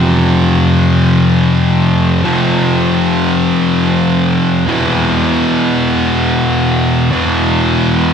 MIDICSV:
0, 0, Header, 1, 2, 480
1, 0, Start_track
1, 0, Tempo, 500000
1, 7809, End_track
2, 0, Start_track
2, 0, Title_t, "Distorted electric guitar"
2, 0, Program_c, 0, 30
2, 0, Note_on_c, 0, 41, 51
2, 0, Note_on_c, 0, 48, 54
2, 0, Note_on_c, 0, 53, 55
2, 2124, Note_off_c, 0, 41, 0
2, 2135, Note_off_c, 0, 48, 0
2, 2136, Note_on_c, 0, 41, 48
2, 2138, Note_off_c, 0, 53, 0
2, 2149, Note_on_c, 0, 48, 58
2, 2156, Note_on_c, 0, 53, 61
2, 4472, Note_off_c, 0, 41, 0
2, 4478, Note_off_c, 0, 48, 0
2, 4478, Note_on_c, 0, 40, 50
2, 4482, Note_off_c, 0, 53, 0
2, 4492, Note_on_c, 0, 47, 57
2, 4499, Note_on_c, 0, 52, 56
2, 6819, Note_off_c, 0, 40, 0
2, 6823, Note_on_c, 0, 40, 49
2, 6826, Note_off_c, 0, 47, 0
2, 6838, Note_on_c, 0, 47, 54
2, 6840, Note_off_c, 0, 52, 0
2, 6844, Note_on_c, 0, 52, 59
2, 7809, Note_off_c, 0, 40, 0
2, 7809, Note_off_c, 0, 47, 0
2, 7809, Note_off_c, 0, 52, 0
2, 7809, End_track
0, 0, End_of_file